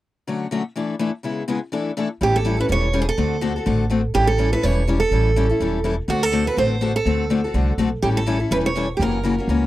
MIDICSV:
0, 0, Header, 1, 4, 480
1, 0, Start_track
1, 0, Tempo, 242229
1, 545, Time_signature, 4, 2, 24, 8
1, 19154, End_track
2, 0, Start_track
2, 0, Title_t, "Steel-string acoustic guitar"
2, 0, Program_c, 0, 25
2, 4424, Note_on_c, 0, 67, 80
2, 4673, Note_on_c, 0, 69, 82
2, 4674, Note_off_c, 0, 67, 0
2, 5154, Note_off_c, 0, 69, 0
2, 5164, Note_on_c, 0, 71, 78
2, 5254, Note_off_c, 0, 71, 0
2, 5391, Note_on_c, 0, 73, 90
2, 5969, Note_off_c, 0, 73, 0
2, 5977, Note_on_c, 0, 68, 61
2, 6107, Note_off_c, 0, 68, 0
2, 6118, Note_on_c, 0, 69, 87
2, 7940, Note_off_c, 0, 69, 0
2, 8217, Note_on_c, 0, 67, 87
2, 8462, Note_off_c, 0, 67, 0
2, 8470, Note_on_c, 0, 69, 86
2, 8965, Note_off_c, 0, 69, 0
2, 8973, Note_on_c, 0, 71, 78
2, 9180, Note_off_c, 0, 71, 0
2, 9180, Note_on_c, 0, 73, 87
2, 9896, Note_off_c, 0, 73, 0
2, 9904, Note_on_c, 0, 69, 88
2, 11752, Note_off_c, 0, 69, 0
2, 12085, Note_on_c, 0, 66, 73
2, 12344, Note_off_c, 0, 66, 0
2, 12344, Note_on_c, 0, 69, 81
2, 12818, Note_off_c, 0, 69, 0
2, 12826, Note_on_c, 0, 71, 75
2, 13017, Note_off_c, 0, 71, 0
2, 13046, Note_on_c, 0, 72, 84
2, 13782, Note_off_c, 0, 72, 0
2, 13790, Note_on_c, 0, 69, 81
2, 15619, Note_off_c, 0, 69, 0
2, 15902, Note_on_c, 0, 67, 74
2, 16001, Note_off_c, 0, 67, 0
2, 16191, Note_on_c, 0, 69, 78
2, 16626, Note_off_c, 0, 69, 0
2, 16880, Note_on_c, 0, 71, 88
2, 16979, Note_off_c, 0, 71, 0
2, 17162, Note_on_c, 0, 73, 80
2, 17593, Note_off_c, 0, 73, 0
2, 17772, Note_on_c, 0, 67, 51
2, 17862, Note_off_c, 0, 67, 0
2, 17884, Note_on_c, 0, 70, 70
2, 19154, Note_off_c, 0, 70, 0
2, 19154, End_track
3, 0, Start_track
3, 0, Title_t, "Steel-string acoustic guitar"
3, 0, Program_c, 1, 25
3, 544, Note_on_c, 1, 50, 52
3, 550, Note_on_c, 1, 54, 51
3, 557, Note_on_c, 1, 57, 61
3, 565, Note_on_c, 1, 61, 52
3, 576, Note_on_c, 1, 66, 60
3, 896, Note_off_c, 1, 50, 0
3, 899, Note_off_c, 1, 54, 0
3, 903, Note_off_c, 1, 57, 0
3, 907, Note_off_c, 1, 61, 0
3, 913, Note_off_c, 1, 66, 0
3, 1012, Note_on_c, 1, 50, 69
3, 1032, Note_on_c, 1, 54, 64
3, 1032, Note_on_c, 1, 57, 70
3, 1035, Note_on_c, 1, 61, 70
3, 1041, Note_on_c, 1, 66, 79
3, 1215, Note_off_c, 1, 50, 0
3, 1225, Note_off_c, 1, 54, 0
3, 1225, Note_off_c, 1, 57, 0
3, 1226, Note_off_c, 1, 61, 0
3, 1229, Note_off_c, 1, 66, 0
3, 1497, Note_on_c, 1, 52, 58
3, 1508, Note_on_c, 1, 57, 60
3, 1517, Note_on_c, 1, 62, 61
3, 1529, Note_on_c, 1, 69, 61
3, 1532, Note_on_c, 1, 64, 60
3, 1853, Note_off_c, 1, 52, 0
3, 1859, Note_off_c, 1, 57, 0
3, 1863, Note_off_c, 1, 62, 0
3, 1869, Note_off_c, 1, 69, 0
3, 1871, Note_off_c, 1, 64, 0
3, 1969, Note_on_c, 1, 52, 64
3, 1970, Note_on_c, 1, 57, 75
3, 1982, Note_on_c, 1, 62, 67
3, 1992, Note_on_c, 1, 64, 68
3, 1996, Note_on_c, 1, 69, 69
3, 2173, Note_off_c, 1, 52, 0
3, 2174, Note_off_c, 1, 57, 0
3, 2180, Note_off_c, 1, 62, 0
3, 2185, Note_off_c, 1, 64, 0
3, 2187, Note_off_c, 1, 69, 0
3, 2441, Note_on_c, 1, 49, 54
3, 2458, Note_on_c, 1, 56, 54
3, 2463, Note_on_c, 1, 59, 59
3, 2475, Note_on_c, 1, 64, 61
3, 2477, Note_on_c, 1, 68, 54
3, 2805, Note_off_c, 1, 49, 0
3, 2814, Note_off_c, 1, 56, 0
3, 2816, Note_off_c, 1, 59, 0
3, 2822, Note_off_c, 1, 64, 0
3, 2823, Note_off_c, 1, 68, 0
3, 2928, Note_on_c, 1, 49, 74
3, 2933, Note_on_c, 1, 56, 69
3, 2941, Note_on_c, 1, 59, 73
3, 2944, Note_on_c, 1, 64, 81
3, 2959, Note_on_c, 1, 68, 84
3, 3133, Note_off_c, 1, 49, 0
3, 3135, Note_off_c, 1, 56, 0
3, 3139, Note_off_c, 1, 59, 0
3, 3141, Note_off_c, 1, 64, 0
3, 3148, Note_off_c, 1, 68, 0
3, 3407, Note_on_c, 1, 52, 61
3, 3422, Note_on_c, 1, 57, 57
3, 3427, Note_on_c, 1, 62, 64
3, 3428, Note_on_c, 1, 69, 65
3, 3435, Note_on_c, 1, 64, 63
3, 3768, Note_off_c, 1, 52, 0
3, 3775, Note_off_c, 1, 57, 0
3, 3778, Note_off_c, 1, 62, 0
3, 3779, Note_off_c, 1, 69, 0
3, 3782, Note_off_c, 1, 64, 0
3, 3900, Note_on_c, 1, 57, 70
3, 3901, Note_on_c, 1, 52, 65
3, 3908, Note_on_c, 1, 62, 66
3, 3913, Note_on_c, 1, 64, 73
3, 3934, Note_on_c, 1, 69, 72
3, 4099, Note_off_c, 1, 52, 0
3, 4099, Note_off_c, 1, 57, 0
3, 4103, Note_off_c, 1, 62, 0
3, 4105, Note_off_c, 1, 64, 0
3, 4115, Note_off_c, 1, 69, 0
3, 4374, Note_on_c, 1, 55, 62
3, 4376, Note_on_c, 1, 52, 52
3, 4383, Note_on_c, 1, 61, 60
3, 4388, Note_on_c, 1, 64, 63
3, 4395, Note_on_c, 1, 69, 67
3, 4731, Note_off_c, 1, 55, 0
3, 4732, Note_off_c, 1, 52, 0
3, 4736, Note_off_c, 1, 61, 0
3, 4738, Note_off_c, 1, 64, 0
3, 4742, Note_off_c, 1, 69, 0
3, 4847, Note_on_c, 1, 52, 72
3, 4852, Note_on_c, 1, 55, 74
3, 4866, Note_on_c, 1, 61, 73
3, 4874, Note_on_c, 1, 64, 75
3, 4886, Note_on_c, 1, 69, 71
3, 5052, Note_off_c, 1, 52, 0
3, 5054, Note_off_c, 1, 55, 0
3, 5061, Note_off_c, 1, 61, 0
3, 5065, Note_off_c, 1, 64, 0
3, 5071, Note_off_c, 1, 69, 0
3, 5091, Note_on_c, 1, 69, 49
3, 5125, Note_on_c, 1, 64, 45
3, 5147, Note_on_c, 1, 61, 43
3, 5307, Note_off_c, 1, 61, 0
3, 5317, Note_off_c, 1, 64, 0
3, 5318, Note_off_c, 1, 69, 0
3, 5319, Note_on_c, 1, 52, 58
3, 5331, Note_on_c, 1, 61, 59
3, 5332, Note_on_c, 1, 55, 60
3, 5341, Note_on_c, 1, 64, 67
3, 5346, Note_on_c, 1, 69, 64
3, 5683, Note_off_c, 1, 52, 0
3, 5689, Note_off_c, 1, 61, 0
3, 5690, Note_off_c, 1, 55, 0
3, 5694, Note_off_c, 1, 64, 0
3, 5697, Note_off_c, 1, 69, 0
3, 5810, Note_on_c, 1, 52, 64
3, 5815, Note_on_c, 1, 61, 81
3, 5824, Note_on_c, 1, 55, 76
3, 5836, Note_on_c, 1, 64, 69
3, 5844, Note_on_c, 1, 69, 76
3, 6013, Note_off_c, 1, 52, 0
3, 6015, Note_off_c, 1, 61, 0
3, 6019, Note_off_c, 1, 55, 0
3, 6026, Note_off_c, 1, 64, 0
3, 6030, Note_off_c, 1, 69, 0
3, 6291, Note_on_c, 1, 50, 59
3, 6296, Note_on_c, 1, 57, 67
3, 6303, Note_on_c, 1, 66, 55
3, 6308, Note_on_c, 1, 60, 59
3, 6309, Note_on_c, 1, 69, 67
3, 6649, Note_off_c, 1, 50, 0
3, 6651, Note_off_c, 1, 57, 0
3, 6655, Note_off_c, 1, 66, 0
3, 6657, Note_off_c, 1, 60, 0
3, 6658, Note_off_c, 1, 69, 0
3, 6762, Note_on_c, 1, 50, 78
3, 6764, Note_on_c, 1, 57, 77
3, 6778, Note_on_c, 1, 60, 73
3, 6778, Note_on_c, 1, 66, 78
3, 6783, Note_on_c, 1, 69, 82
3, 6968, Note_off_c, 1, 50, 0
3, 6969, Note_off_c, 1, 57, 0
3, 6976, Note_off_c, 1, 60, 0
3, 6976, Note_off_c, 1, 66, 0
3, 6979, Note_off_c, 1, 69, 0
3, 7052, Note_on_c, 1, 69, 53
3, 7074, Note_on_c, 1, 66, 45
3, 7095, Note_on_c, 1, 60, 43
3, 7225, Note_off_c, 1, 60, 0
3, 7240, Note_off_c, 1, 66, 0
3, 7245, Note_off_c, 1, 69, 0
3, 7247, Note_on_c, 1, 57, 64
3, 7248, Note_on_c, 1, 60, 64
3, 7249, Note_on_c, 1, 50, 62
3, 7264, Note_on_c, 1, 66, 70
3, 7269, Note_on_c, 1, 69, 70
3, 7606, Note_off_c, 1, 57, 0
3, 7607, Note_off_c, 1, 50, 0
3, 7607, Note_off_c, 1, 60, 0
3, 7614, Note_off_c, 1, 66, 0
3, 7617, Note_off_c, 1, 69, 0
3, 7720, Note_on_c, 1, 50, 65
3, 7735, Note_on_c, 1, 57, 70
3, 7741, Note_on_c, 1, 60, 71
3, 7746, Note_on_c, 1, 66, 72
3, 7750, Note_on_c, 1, 69, 69
3, 7927, Note_off_c, 1, 50, 0
3, 7934, Note_off_c, 1, 57, 0
3, 7937, Note_off_c, 1, 60, 0
3, 7939, Note_off_c, 1, 66, 0
3, 7942, Note_off_c, 1, 69, 0
3, 8201, Note_on_c, 1, 52, 58
3, 8210, Note_on_c, 1, 55, 63
3, 8223, Note_on_c, 1, 64, 61
3, 8224, Note_on_c, 1, 61, 58
3, 8231, Note_on_c, 1, 69, 64
3, 8562, Note_off_c, 1, 52, 0
3, 8567, Note_off_c, 1, 55, 0
3, 8574, Note_off_c, 1, 61, 0
3, 8574, Note_off_c, 1, 64, 0
3, 8578, Note_off_c, 1, 69, 0
3, 8681, Note_on_c, 1, 52, 72
3, 8689, Note_on_c, 1, 55, 81
3, 8698, Note_on_c, 1, 61, 78
3, 8709, Note_on_c, 1, 69, 89
3, 8713, Note_on_c, 1, 64, 81
3, 8886, Note_off_c, 1, 52, 0
3, 8891, Note_off_c, 1, 55, 0
3, 8895, Note_off_c, 1, 61, 0
3, 8900, Note_off_c, 1, 69, 0
3, 8902, Note_off_c, 1, 64, 0
3, 8961, Note_on_c, 1, 69, 50
3, 8988, Note_on_c, 1, 64, 51
3, 9002, Note_on_c, 1, 61, 41
3, 9171, Note_off_c, 1, 69, 0
3, 9184, Note_off_c, 1, 64, 0
3, 9185, Note_off_c, 1, 61, 0
3, 9193, Note_on_c, 1, 52, 70
3, 9204, Note_on_c, 1, 55, 63
3, 9209, Note_on_c, 1, 61, 68
3, 9218, Note_on_c, 1, 64, 62
3, 9219, Note_on_c, 1, 69, 66
3, 9538, Note_off_c, 1, 52, 0
3, 9543, Note_off_c, 1, 55, 0
3, 9546, Note_off_c, 1, 61, 0
3, 9550, Note_off_c, 1, 64, 0
3, 9551, Note_off_c, 1, 69, 0
3, 9660, Note_on_c, 1, 52, 65
3, 9676, Note_on_c, 1, 61, 70
3, 9677, Note_on_c, 1, 55, 72
3, 9689, Note_on_c, 1, 69, 69
3, 9691, Note_on_c, 1, 64, 82
3, 9855, Note_off_c, 1, 52, 0
3, 9863, Note_off_c, 1, 61, 0
3, 9864, Note_off_c, 1, 55, 0
3, 9870, Note_off_c, 1, 69, 0
3, 9871, Note_off_c, 1, 64, 0
3, 10140, Note_on_c, 1, 52, 61
3, 10142, Note_on_c, 1, 55, 54
3, 10143, Note_on_c, 1, 61, 55
3, 10158, Note_on_c, 1, 64, 61
3, 10161, Note_on_c, 1, 69, 60
3, 10491, Note_off_c, 1, 52, 0
3, 10492, Note_off_c, 1, 55, 0
3, 10493, Note_off_c, 1, 61, 0
3, 10500, Note_off_c, 1, 64, 0
3, 10501, Note_off_c, 1, 69, 0
3, 10626, Note_on_c, 1, 55, 80
3, 10631, Note_on_c, 1, 52, 75
3, 10643, Note_on_c, 1, 61, 81
3, 10646, Note_on_c, 1, 64, 79
3, 10652, Note_on_c, 1, 69, 86
3, 10818, Note_off_c, 1, 55, 0
3, 10821, Note_off_c, 1, 52, 0
3, 10827, Note_off_c, 1, 61, 0
3, 10828, Note_off_c, 1, 64, 0
3, 10831, Note_off_c, 1, 69, 0
3, 10887, Note_on_c, 1, 69, 54
3, 10909, Note_on_c, 1, 64, 43
3, 10930, Note_on_c, 1, 61, 42
3, 11094, Note_off_c, 1, 69, 0
3, 11100, Note_off_c, 1, 61, 0
3, 11105, Note_off_c, 1, 64, 0
3, 11106, Note_on_c, 1, 52, 62
3, 11106, Note_on_c, 1, 55, 57
3, 11124, Note_on_c, 1, 61, 60
3, 11136, Note_on_c, 1, 64, 67
3, 11140, Note_on_c, 1, 69, 75
3, 11454, Note_off_c, 1, 52, 0
3, 11454, Note_off_c, 1, 55, 0
3, 11463, Note_off_c, 1, 61, 0
3, 11469, Note_off_c, 1, 64, 0
3, 11471, Note_off_c, 1, 69, 0
3, 11571, Note_on_c, 1, 52, 67
3, 11575, Note_on_c, 1, 55, 65
3, 11575, Note_on_c, 1, 61, 71
3, 11590, Note_on_c, 1, 64, 68
3, 11601, Note_on_c, 1, 69, 80
3, 11770, Note_off_c, 1, 52, 0
3, 11772, Note_off_c, 1, 55, 0
3, 11773, Note_off_c, 1, 61, 0
3, 11780, Note_off_c, 1, 64, 0
3, 11786, Note_off_c, 1, 69, 0
3, 12046, Note_on_c, 1, 50, 59
3, 12061, Note_on_c, 1, 57, 58
3, 12061, Note_on_c, 1, 60, 64
3, 12070, Note_on_c, 1, 66, 58
3, 12082, Note_on_c, 1, 69, 64
3, 12404, Note_off_c, 1, 50, 0
3, 12412, Note_off_c, 1, 57, 0
3, 12412, Note_off_c, 1, 60, 0
3, 12416, Note_off_c, 1, 66, 0
3, 12422, Note_off_c, 1, 69, 0
3, 12523, Note_on_c, 1, 50, 73
3, 12534, Note_on_c, 1, 57, 71
3, 12543, Note_on_c, 1, 60, 76
3, 12551, Note_on_c, 1, 66, 75
3, 12554, Note_on_c, 1, 69, 83
3, 12727, Note_off_c, 1, 50, 0
3, 12732, Note_off_c, 1, 57, 0
3, 12736, Note_off_c, 1, 60, 0
3, 12740, Note_off_c, 1, 66, 0
3, 12742, Note_off_c, 1, 69, 0
3, 12787, Note_on_c, 1, 69, 51
3, 12805, Note_on_c, 1, 66, 46
3, 12819, Note_on_c, 1, 60, 43
3, 13004, Note_off_c, 1, 69, 0
3, 13006, Note_off_c, 1, 66, 0
3, 13007, Note_on_c, 1, 50, 61
3, 13008, Note_off_c, 1, 60, 0
3, 13021, Note_on_c, 1, 57, 59
3, 13030, Note_on_c, 1, 66, 61
3, 13032, Note_on_c, 1, 60, 61
3, 13038, Note_on_c, 1, 69, 73
3, 13364, Note_off_c, 1, 50, 0
3, 13372, Note_off_c, 1, 57, 0
3, 13376, Note_off_c, 1, 66, 0
3, 13377, Note_off_c, 1, 60, 0
3, 13380, Note_off_c, 1, 69, 0
3, 13494, Note_on_c, 1, 57, 69
3, 13497, Note_on_c, 1, 50, 71
3, 13505, Note_on_c, 1, 60, 71
3, 13517, Note_on_c, 1, 66, 78
3, 13521, Note_on_c, 1, 69, 82
3, 13692, Note_off_c, 1, 57, 0
3, 13694, Note_off_c, 1, 50, 0
3, 13698, Note_off_c, 1, 60, 0
3, 13704, Note_off_c, 1, 66, 0
3, 13706, Note_off_c, 1, 69, 0
3, 13992, Note_on_c, 1, 50, 52
3, 13997, Note_on_c, 1, 57, 62
3, 14001, Note_on_c, 1, 60, 61
3, 14010, Note_on_c, 1, 69, 63
3, 14015, Note_on_c, 1, 66, 61
3, 14338, Note_off_c, 1, 50, 0
3, 14340, Note_off_c, 1, 57, 0
3, 14342, Note_off_c, 1, 60, 0
3, 14347, Note_off_c, 1, 69, 0
3, 14349, Note_off_c, 1, 66, 0
3, 14464, Note_on_c, 1, 50, 72
3, 14469, Note_on_c, 1, 57, 79
3, 14482, Note_on_c, 1, 60, 78
3, 14485, Note_on_c, 1, 69, 79
3, 14486, Note_on_c, 1, 66, 84
3, 14658, Note_off_c, 1, 50, 0
3, 14660, Note_off_c, 1, 57, 0
3, 14667, Note_off_c, 1, 60, 0
3, 14668, Note_off_c, 1, 69, 0
3, 14669, Note_off_c, 1, 66, 0
3, 14747, Note_on_c, 1, 69, 49
3, 14760, Note_on_c, 1, 66, 45
3, 14796, Note_on_c, 1, 60, 46
3, 14931, Note_off_c, 1, 60, 0
3, 14944, Note_off_c, 1, 69, 0
3, 14944, Note_on_c, 1, 50, 65
3, 14946, Note_off_c, 1, 66, 0
3, 14948, Note_on_c, 1, 57, 60
3, 14954, Note_on_c, 1, 60, 62
3, 14967, Note_on_c, 1, 69, 64
3, 14970, Note_on_c, 1, 66, 62
3, 15294, Note_off_c, 1, 50, 0
3, 15296, Note_off_c, 1, 57, 0
3, 15300, Note_off_c, 1, 60, 0
3, 15306, Note_off_c, 1, 69, 0
3, 15307, Note_off_c, 1, 66, 0
3, 15419, Note_on_c, 1, 50, 80
3, 15428, Note_on_c, 1, 57, 77
3, 15435, Note_on_c, 1, 66, 75
3, 15439, Note_on_c, 1, 60, 72
3, 15452, Note_on_c, 1, 69, 87
3, 15616, Note_off_c, 1, 50, 0
3, 15621, Note_off_c, 1, 57, 0
3, 15624, Note_off_c, 1, 66, 0
3, 15626, Note_off_c, 1, 60, 0
3, 15632, Note_off_c, 1, 69, 0
3, 15908, Note_on_c, 1, 52, 60
3, 15912, Note_on_c, 1, 55, 63
3, 15923, Note_on_c, 1, 64, 59
3, 15926, Note_on_c, 1, 61, 64
3, 15937, Note_on_c, 1, 69, 62
3, 16257, Note_off_c, 1, 52, 0
3, 16259, Note_off_c, 1, 55, 0
3, 16265, Note_off_c, 1, 64, 0
3, 16266, Note_off_c, 1, 61, 0
3, 16272, Note_off_c, 1, 69, 0
3, 16378, Note_on_c, 1, 52, 75
3, 16391, Note_on_c, 1, 55, 82
3, 16394, Note_on_c, 1, 61, 79
3, 16399, Note_on_c, 1, 64, 84
3, 16412, Note_on_c, 1, 69, 76
3, 16576, Note_off_c, 1, 52, 0
3, 16583, Note_off_c, 1, 55, 0
3, 16584, Note_off_c, 1, 61, 0
3, 16587, Note_off_c, 1, 64, 0
3, 16593, Note_off_c, 1, 69, 0
3, 16616, Note_on_c, 1, 69, 48
3, 16643, Note_on_c, 1, 64, 47
3, 16665, Note_on_c, 1, 61, 45
3, 16841, Note_off_c, 1, 69, 0
3, 16845, Note_off_c, 1, 61, 0
3, 16854, Note_off_c, 1, 64, 0
3, 16861, Note_on_c, 1, 52, 66
3, 16869, Note_on_c, 1, 61, 65
3, 16874, Note_on_c, 1, 55, 70
3, 16886, Note_on_c, 1, 64, 66
3, 16886, Note_on_c, 1, 69, 67
3, 17215, Note_off_c, 1, 52, 0
3, 17218, Note_off_c, 1, 61, 0
3, 17221, Note_off_c, 1, 55, 0
3, 17227, Note_off_c, 1, 64, 0
3, 17227, Note_off_c, 1, 69, 0
3, 17349, Note_on_c, 1, 52, 74
3, 17369, Note_on_c, 1, 55, 69
3, 17371, Note_on_c, 1, 61, 72
3, 17381, Note_on_c, 1, 64, 80
3, 17384, Note_on_c, 1, 69, 82
3, 17543, Note_off_c, 1, 52, 0
3, 17553, Note_off_c, 1, 55, 0
3, 17554, Note_off_c, 1, 61, 0
3, 17559, Note_off_c, 1, 64, 0
3, 17561, Note_off_c, 1, 69, 0
3, 17837, Note_on_c, 1, 49, 62
3, 17850, Note_on_c, 1, 58, 60
3, 17851, Note_on_c, 1, 52, 58
3, 17865, Note_on_c, 1, 66, 71
3, 17868, Note_on_c, 1, 61, 66
3, 18184, Note_off_c, 1, 49, 0
3, 18190, Note_off_c, 1, 52, 0
3, 18190, Note_off_c, 1, 58, 0
3, 18198, Note_off_c, 1, 66, 0
3, 18199, Note_off_c, 1, 61, 0
3, 18299, Note_on_c, 1, 49, 74
3, 18319, Note_on_c, 1, 58, 75
3, 18322, Note_on_c, 1, 52, 76
3, 18332, Note_on_c, 1, 61, 80
3, 18338, Note_on_c, 1, 66, 78
3, 18499, Note_off_c, 1, 49, 0
3, 18509, Note_off_c, 1, 58, 0
3, 18510, Note_off_c, 1, 52, 0
3, 18515, Note_off_c, 1, 61, 0
3, 18518, Note_off_c, 1, 66, 0
3, 18595, Note_on_c, 1, 66, 48
3, 18619, Note_on_c, 1, 61, 45
3, 18631, Note_on_c, 1, 58, 40
3, 18792, Note_off_c, 1, 58, 0
3, 18792, Note_off_c, 1, 66, 0
3, 18799, Note_off_c, 1, 61, 0
3, 18801, Note_on_c, 1, 49, 61
3, 18808, Note_on_c, 1, 52, 62
3, 18816, Note_on_c, 1, 58, 66
3, 18823, Note_on_c, 1, 61, 67
3, 18834, Note_on_c, 1, 66, 65
3, 19147, Note_off_c, 1, 49, 0
3, 19150, Note_off_c, 1, 52, 0
3, 19154, Note_off_c, 1, 58, 0
3, 19154, Note_off_c, 1, 61, 0
3, 19154, Note_off_c, 1, 66, 0
3, 19154, End_track
4, 0, Start_track
4, 0, Title_t, "Upright bass"
4, 0, Program_c, 2, 32
4, 4380, Note_on_c, 2, 33, 75
4, 5150, Note_off_c, 2, 33, 0
4, 5336, Note_on_c, 2, 28, 80
4, 6107, Note_off_c, 2, 28, 0
4, 6301, Note_on_c, 2, 38, 81
4, 7069, Note_off_c, 2, 38, 0
4, 7264, Note_on_c, 2, 33, 76
4, 8030, Note_off_c, 2, 33, 0
4, 8216, Note_on_c, 2, 33, 78
4, 8986, Note_off_c, 2, 33, 0
4, 9186, Note_on_c, 2, 28, 79
4, 9952, Note_off_c, 2, 28, 0
4, 10128, Note_on_c, 2, 33, 79
4, 10900, Note_off_c, 2, 33, 0
4, 11101, Note_on_c, 2, 28, 74
4, 11868, Note_off_c, 2, 28, 0
4, 12055, Note_on_c, 2, 38, 82
4, 12825, Note_off_c, 2, 38, 0
4, 13030, Note_on_c, 2, 33, 73
4, 13794, Note_off_c, 2, 33, 0
4, 13984, Note_on_c, 2, 38, 78
4, 14751, Note_off_c, 2, 38, 0
4, 14942, Note_on_c, 2, 36, 77
4, 15350, Note_off_c, 2, 36, 0
4, 15412, Note_on_c, 2, 35, 72
4, 15824, Note_off_c, 2, 35, 0
4, 15902, Note_on_c, 2, 33, 79
4, 16671, Note_off_c, 2, 33, 0
4, 16864, Note_on_c, 2, 28, 75
4, 17634, Note_off_c, 2, 28, 0
4, 17824, Note_on_c, 2, 30, 88
4, 18595, Note_off_c, 2, 30, 0
4, 18777, Note_on_c, 2, 37, 78
4, 19154, Note_off_c, 2, 37, 0
4, 19154, End_track
0, 0, End_of_file